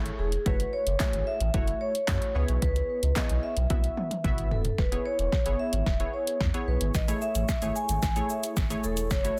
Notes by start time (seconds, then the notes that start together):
Already playing: G#1 A3 E4 G#4 C#5
0.06 closed hi-hat
0.19 E1 G#4
0.32 closed hi-hat
0.46 F#1 A3 E4 F#4 B4 C#5, kick, closed hi-hat
0.60 closed hi-hat
0.73 C#5
0.87 F#1, closed hi-hat
1.00 A3 E4 F#4 G#4, kick, snare, clap, closed hi-hat
1.13 G#1, closed hi-hat
1.27 E5
1.40 A1, closed hi-hat
1.54 F#1 A3 E4 F#4 C#5, kick, closed hi-hat
1.67 closed hi-hat
1.81 C#5
1.95 closed hi-hat
2.08 F#2 A3 E4 F#4 C#5, kick, snare, clap, closed hi-hat
2.22 closed hi-hat
2.35 C#2 B3 E4 G#4 B4 C#5
2.48 B1, closed hi-hat
2.62 C#2 B4, kick, closed hi-hat
2.76 closed hi-hat
3.03 C#2, closed hi-hat
3.16 B3 E4 G#4 C#5 D#5, kick, snare, clap, closed hi-hat
3.29 B1, closed hi-hat
3.43 E5
3.57 B1, closed hi-hat
3.70 B1 B3 E4 F#4 E5, kick, closed hi-hat, high tom
3.84 closed hi-hat
3.97 mid tom
4.11 closed hi-hat, mid tom
4.24 G#1 B3 E4 F#4 E5, kick, closed hi-hat, mid tom
4.38 closed hi-hat
4.51 D#1 A4, floor tom
4.65 closed hi-hat, floor tom
4.78 E1 B4, kick, snare
4.92 B3 E4 G#4 C#5, closed hi-hat
5.06 C#5
5.19 E1, closed hi-hat
5.32 kick, snare
5.46 F#1 B3 E4 G#4 C#5, closed hi-hat
5.59 E5
5.73 G#1, closed hi-hat
5.86 E1, kick, snare
6.00 B3 E4 G#4 C#5, closed hi-hat
6.14 C#5
6.27 closed hi-hat
6.41 E2, kick, snare
6.54 B3 E4 G#4 C#5, closed hi-hat
6.68 B1 B4
6.81 G#1, closed hi-hat
6.95 A1 D#5, kick, snare, shaker
7.08 A3 E4 G#4 C#5, closed hi-hat, shaker
7.22 E5, shaker
7.35 A1, closed hi-hat, shaker
7.49 kick, snare, shaker
7.62 G#1 A3 E4 G#4 C#5, closed hi-hat, shaker
7.76 G#5, shaker
7.89 G#1, closed hi-hat, shaker
8.02 A1, kick, snare, shaker
8.16 A3 E4 G#4 C#5, closed hi-hat, shaker
8.30 E5, shaker
8.43 closed hi-hat, shaker
8.57 G#1, kick, snare, shaker
8.70 A3 E4 G#4 C#5, closed hi-hat, shaker
8.84 E1 A4, shaker
8.97 closed hi-hat, shaker
9.11 F#1 C#5, kick, snare, shaker
9.24 A3 E4 F#4 C#5, closed hi-hat, shaker